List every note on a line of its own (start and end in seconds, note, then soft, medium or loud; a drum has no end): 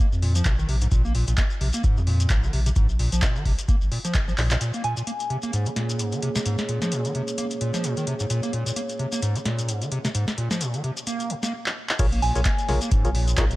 0.12 0.42 F2 loud
0.12 shekere soft
0.22 0.33 A#2 medium
0.22 open hi-hat loud
0.35 0.47 F3 medium
0.35 closed hi-hat medium
0.35 shekere medium
0.45 0.64 A#1 medium
0.45 0.56 A#2 medium
0.45 kick loud
0.45 clap loud
0.45 closed hi-hat medium
0.45 shekere medium
0.59 0.67 D#3 medium
0.59 shekere soft
0.68 0.87 A#1 loud
0.68 0.76 C3 medium
0.68 open hi-hat medium
0.81 0.87 G#2 medium
0.81 closed hi-hat medium
0.81 shekere medium
0.92 1.23 A#1 loud
0.92 1.02 A#2 loud
0.92 kick loud
0.92 closed hi-hat medium
0.92 shekere medium
1.05 1.13 A#3 medium
1.05 shekere soft
1.15 1.25 A#2 medium
1.15 open hi-hat loud
1.27 1.36 A#1 medium
1.27 1.33 A#2 medium
1.27 closed hi-hat medium
1.27 shekere medium
1.37 1.42 A#3 medium
1.37 kick loud
1.37 clap loud
1.37 closed hi-hat medium
1.37 shekere medium
1.50 shekere soft
1.61 1.71 A#1 medium
1.61 1.68 C3 medium
1.61 open hi-hat medium
1.73 1.82 A#3 medium
1.73 closed hi-hat medium
1.73 shekere medium
1.84 1.99 G#2 loud
1.84 kick loud
1.84 closed hi-hat medium
1.84 shekere medium
1.97 2.27 F2 loud
1.97 2.00 F3 medium
1.97 shekere soft
2.07 2.32 A#2 medium
2.07 open hi-hat loud
2.20 closed hi-hat medium
2.20 shekere medium
2.30 2.49 A#1 medium
2.30 2.45 G#2 medium
2.30 kick loud
2.30 clap loud
2.30 closed hi-hat medium
2.30 shekere medium
2.43 2.51 D#3 medium
2.43 shekere soft
2.53 2.72 A#1 loud
2.53 2.60 C3 medium
2.53 open hi-hat medium
2.66 2.70 C3 loud
2.66 closed hi-hat medium
2.66 shekere medium
2.76 3.08 A#1 loud
2.76 2.87 G#2 loud
2.76 kick loud
2.76 closed hi-hat medium
2.76 shekere medium
2.89 shekere soft
2.99 3.10 A#2 medium
2.99 open hi-hat loud
3.12 3.20 A#1 medium
3.12 3.24 F3 medium
3.12 closed hi-hat medium
3.12 shekere medium
3.22 3.37 A#2 medium
3.22 kick loud
3.22 clap loud
3.22 closed hi-hat medium
3.22 shekere medium
3.36 3.44 D#3 medium
3.36 shekere soft
3.45 3.56 A#1 medium
3.45 3.53 C3 medium
3.45 kick medium
3.45 open hi-hat medium
3.59 closed hi-hat medium
3.59 shekere medium
3.69 3.76 A#3 medium
3.69 kick loud
3.69 closed hi-hat medium
3.69 shekere medium
3.81 3.89 G#1 medium
3.81 shekere soft
3.92 3.99 A#2 medium
3.92 open hi-hat loud
4.05 4.16 F3 loud
4.05 closed hi-hat medium
4.05 shekere medium
4.14 4.33 G#1 loud
4.14 4.19 A#2 medium
4.14 kick loud
4.14 clap loud
4.14 closed hi-hat medium
4.14 shekere medium
4.28 4.33 F3 medium
4.28 shekere soft
4.38 4.56 A#1 medium
4.38 4.49 A#2 medium
4.38 clap medium
4.38 open hi-hat medium
4.51 4.56 A#2 loud
4.51 clap loud
4.51 closed hi-hat medium
4.51 shekere medium
4.61 4.72 A#2 loud
4.61 11.49 A#3 medium
4.61 11.49 G#4 medium
4.61 11.49 C#5 medium
4.61 closed hi-hat medium
4.61 shekere medium
4.74 4.82 A#3 medium
4.74 closed hi-hat soft
4.74 shekere soft
4.84 4.95 A#2 medium
4.84 5.30 G#5 medium
4.84 closed hi-hat medium
4.97 5.03 A#2 medium
4.97 closed hi-hat soft
4.97 shekere medium
5.07 5.11 A#3 medium
5.07 closed hi-hat medium
5.07 shekere medium
5.20 closed hi-hat soft
5.20 shekere soft
5.30 5.37 C3 medium
5.30 closed hi-hat soft
5.42 5.51 A#3 medium
5.42 closed hi-hat soft
5.42 shekere medium
5.53 5.68 G#2 loud
5.53 closed hi-hat medium
5.53 shekere medium
5.66 5.70 F3 medium
5.66 closed hi-hat soft
5.66 shekere soft
5.76 6.01 A#2 medium
5.76 snare medium
5.76 closed hi-hat medium
5.89 closed hi-hat soft
5.89 shekere medium
5.99 6.14 G#2 medium
5.99 closed hi-hat medium
5.99 shekere medium
6.12 6.21 D#3 medium
6.12 closed hi-hat soft
6.12 shekere soft
6.22 6.30 C3 medium
6.22 closed hi-hat medium
6.36 6.39 C3 loud
6.36 snare medium
6.36 closed hi-hat soft
6.36 shekere medium
6.46 6.56 G#2 loud
6.46 closed hi-hat medium
6.46 shekere medium
6.58 snare medium
6.58 closed hi-hat soft
6.58 shekere soft
6.69 6.79 A#2 medium
6.69 closed hi-hat medium
6.82 6.93 F3 medium
6.82 snare medium
6.82 closed hi-hat soft
6.82 shekere medium
6.92 7.06 A#2 medium
6.92 closed hi-hat medium
6.92 shekere medium
7.05 7.13 D#3 medium
7.05 closed hi-hat soft
7.05 shekere soft
7.15 7.22 C3 medium
7.15 closed hi-hat soft
7.28 closed hi-hat soft
7.28 shekere medium
7.38 7.45 A#3 medium
7.38 closed hi-hat medium
7.38 shekere medium
7.51 closed hi-hat soft
7.51 shekere soft
7.61 7.72 A#2 medium
7.61 closed hi-hat medium
7.74 7.86 F3 medium
7.74 snare soft
7.74 closed hi-hat soft
7.74 shekere medium
7.84 7.95 A#2 medium
7.84 closed hi-hat medium
7.84 shekere medium
7.97 8.05 D#3 medium
7.97 closed hi-hat soft
7.97 shekere soft
8.07 8.14 C3 medium
8.07 closed hi-hat medium
8.20 8.26 G#2 medium
8.20 closed hi-hat soft
8.20 shekere medium
8.30 8.41 A#2 loud
8.30 closed hi-hat medium
8.30 shekere medium
8.43 8.51 A#3 medium
8.43 closed hi-hat soft
8.43 shekere soft
8.53 8.64 A#2 medium
8.53 closed hi-hat medium
8.66 8.72 A#2 medium
8.66 closed hi-hat soft
8.66 shekere medium
8.76 8.81 A#3 medium
8.76 closed hi-hat medium
8.76 shekere medium
8.89 closed hi-hat soft
8.89 shekere soft
8.99 9.06 C3 medium
8.99 closed hi-hat soft
9.12 9.21 A#3 medium
9.12 closed hi-hat soft
9.12 shekere medium
9.22 9.37 G#2 loud
9.22 closed hi-hat medium
9.22 shekere medium
9.35 9.39 F3 medium
9.35 closed hi-hat soft
9.35 shekere soft
9.45 9.70 A#2 medium
9.45 snare medium
9.45 closed hi-hat medium
9.59 closed hi-hat soft
9.59 shekere medium
9.69 9.83 G#2 medium
9.69 closed hi-hat medium
9.69 shekere medium
9.82 9.90 D#3 medium
9.82 closed hi-hat soft
9.82 shekere soft
9.92 9.99 C3 medium
9.92 closed hi-hat medium
10.05 10.08 C3 loud
10.05 snare medium
10.05 closed hi-hat soft
10.05 shekere medium
10.15 10.25 G#2 loud
10.15 closed hi-hat medium
10.15 shekere medium
10.28 snare medium
10.28 closed hi-hat soft
10.28 shekere soft
10.38 10.49 A#2 medium
10.38 closed hi-hat medium
10.51 10.62 F3 medium
10.51 snare medium
10.51 closed hi-hat soft
10.51 shekere medium
10.61 10.75 A#2 medium
10.61 closed hi-hat medium
10.61 shekere medium
10.74 10.82 D#3 medium
10.74 closed hi-hat soft
10.74 shekere soft
10.84 10.91 C3 medium
10.84 closed hi-hat soft
10.97 closed hi-hat soft
10.97 shekere medium
11.07 11.32 A#3 medium
11.07 closed hi-hat medium
11.07 shekere medium
11.20 closed hi-hat soft
11.20 shekere soft
11.30 11.34 A#2 medium
11.30 closed hi-hat medium
11.43 11.53 A#3 medium
11.43 snare soft
11.43 closed hi-hat soft
11.43 shekere medium
11.66 clap medium
11.89 clap medium
11.99 12.31 A#1 loud
11.99 12.10 A#2 loud
11.99 13.56 A#3 medium
11.99 12.06 F4 medium
11.99 13.56 G#4 medium
11.99 12.06 G#4 medium
11.99 12.06 A#4 medium
11.99 12.06 C#5 loud
11.99 13.56 C#5 medium
11.99 kick loud
11.99 closed hi-hat loud
11.99 crash loud
11.99 shekere medium
12.12 12.21 A#3 medium
12.12 closed hi-hat soft
12.12 shekere soft
12.22 12.33 A#2 medium
12.22 12.69 G#5 medium
12.22 open hi-hat loud
12.35 12.43 A#1 medium
12.35 12.41 A#2 medium
12.35 12.41 F4 medium
12.35 12.41 G#4 medium
12.35 12.41 A#4 medium
12.35 12.41 C#5 medium
12.35 closed hi-hat soft
12.35 shekere medium
12.45 12.50 A#3 medium
12.45 kick loud
12.45 clap loud
12.45 closed hi-hat loud
12.45 shekere medium
12.59 closed hi-hat soft
12.59 shekere soft
12.68 12.79 A#1 medium
12.68 12.76 C3 medium
12.68 12.80 F4 medium
12.68 12.80 G#4 medium
12.68 12.80 A#4 medium
12.68 12.80 C#5 medium
12.68 snare soft
12.68 open hi-hat medium
12.82 12.90 A#3 medium
12.82 closed hi-hat soft
12.82 shekere medium
12.91 13.06 G#2 loud
12.91 kick loud
12.91 closed hi-hat medium
12.91 shekere medium
13.05 13.34 A#1 medium
13.05 13.08 F3 medium
13.05 13.10 F4 medium
13.05 13.10 G#4 medium
13.05 13.10 A#4 medium
13.05 13.10 C#5 medium
13.05 closed hi-hat soft
13.05 shekere soft
13.15 13.39 A#2 medium
13.15 open hi-hat loud
13.28 closed hi-hat soft
13.28 shekere medium
13.37 13.56 A#1 loud
13.37 13.52 G#2 medium
13.37 13.45 F4 loud
13.37 13.45 G#4 medium
13.37 13.45 A#4 medium
13.37 13.45 C#5 loud
13.37 kick loud
13.37 clap loud
13.37 closed hi-hat medium
13.37 shekere medium
13.50 13.56 D#3 medium
13.50 closed hi-hat soft
13.50 shekere soft